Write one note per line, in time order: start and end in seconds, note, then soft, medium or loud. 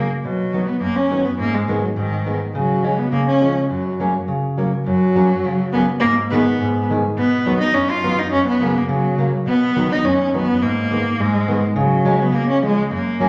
0.24 0.68 B2 medium
0.24 0.69 F#3 medium
0.53 0.66 D#3 soft
0.53 0.66 F#3 soft
0.53 0.66 B3 medium
0.67 0.81 B3 medium
0.81 1.24 F#2 medium
0.81 0.98 A#3 medium
0.96 1.26 C#4 medium
1.11 1.23 D#3 soft
1.11 1.24 F#3 soft
1.11 1.24 B3 medium
1.25 1.39 B3 medium
1.39 1.82 G#2 medium
1.39 1.56 A#3 medium
1.54 1.82 G#3 medium
1.68 1.81 D#3 medium
1.68 1.81 G#3 medium
1.68 1.82 B3 medium
1.82 1.88 F#3 medium
1.96 2.39 G#2 medium
1.96 2.38 D#3 medium
2.25 2.38 D#3 soft
2.25 2.39 G#3 soft
2.25 2.39 B3 soft
2.55 2.98 C#3 medium
2.55 3.00 F#3 medium
2.84 2.96 F#3 medium
2.84 2.96 G#3 medium
2.84 2.97 C#4 medium
2.99 3.12 B3 medium
3.12 3.55 C#3 medium
3.12 3.26 A#3 medium
3.28 3.67 C#4 medium
3.41 3.54 F3 soft
3.41 3.54 G#3 soft
3.41 3.54 C#4 soft
3.70 4.13 F#2 soft
3.70 4.24 F#3 medium
4.00 4.12 F#3 medium
4.00 4.13 A#3 medium
4.00 4.13 C#4 medium
4.28 4.72 C#3 medium
4.58 4.70 F#3 medium
4.58 4.71 A#3 medium
4.58 4.71 C#4 medium
4.86 5.30 F#2 medium
4.86 5.70 F#3 medium
5.16 5.29 F#3 medium
5.16 5.29 A#3 medium
5.16 5.29 C#4 medium
5.44 5.88 C#3 medium
5.72 5.87 F#3 medium
5.72 5.87 A#3 medium
5.72 5.85 B3 medium
5.72 5.87 C#4 medium
6.00 6.46 G#2 medium
6.00 6.14 A#3 loud
6.31 6.44 D#3 medium
6.31 6.45 G#3 medium
6.31 6.85 B3 medium
6.31 6.45 B3 medium
6.61 7.03 G#2 medium
6.90 7.02 D#3 medium
6.90 7.03 G#3 soft
6.90 7.03 B3 medium
7.18 7.60 B2 medium
7.18 7.58 B3 loud
7.46 7.59 D#3 medium
7.46 7.59 F#3 medium
7.46 7.59 B3 medium
7.61 7.76 D#4 medium
7.74 8.17 F#2 medium
7.74 7.92 C#4 medium
7.90 8.20 F4 medium
8.03 8.16 D#3 soft
8.03 8.16 F#3 medium
8.03 8.16 B3 medium
8.19 8.32 D#4 medium
8.32 8.75 F#2 medium
8.32 8.46 C#4 medium
8.48 8.79 B3 medium
8.60 8.73 C#3 medium
8.60 8.73 F#3 medium
8.60 8.74 A#3 medium
8.77 8.90 A#3 medium
8.89 9.17 C#3 medium
8.89 9.31 F#3 medium
9.18 9.31 C#3 medium
9.18 9.31 F#3 medium
9.18 9.32 A#3 medium
9.46 9.76 B2 medium
9.46 9.93 B3 loud
9.76 9.89 D#3 medium
9.76 9.89 F#3 medium
9.76 9.89 B3 medium
9.92 10.07 D#4 medium
10.04 10.47 F#2 medium
10.04 10.35 C#4 medium
10.34 10.47 D#3 medium
10.34 10.47 F#3 soft
10.34 10.47 B3 medium
10.34 10.64 B3 medium
10.62 11.05 G#2 medium
10.62 11.22 A#3 medium
10.91 11.04 D#3 medium
10.91 11.04 G#3 soft
10.91 11.05 B3 medium
11.20 11.63 G#2 medium
11.20 11.64 G#3 medium
11.48 11.61 D#3 medium
11.48 11.61 G#3 medium
11.48 11.61 B3 medium
11.76 12.19 C#3 medium
11.76 12.23 F#3 medium
12.05 12.18 F#3 medium
12.05 12.19 G#3 medium
12.05 12.19 C#4 medium
12.21 12.36 B3 medium
12.32 12.76 C#3 medium
12.32 12.50 A#3 medium
12.50 12.63 C#4 medium
12.63 12.76 F3 medium
12.63 12.76 G#3 medium
12.63 12.91 G#3 medium
12.63 12.76 C#4 soft
12.91 13.29 F#2 medium
12.91 13.29 A#3 medium
13.20 13.29 F#3 medium
13.20 13.29 A#3 medium
13.20 13.29 C#4 medium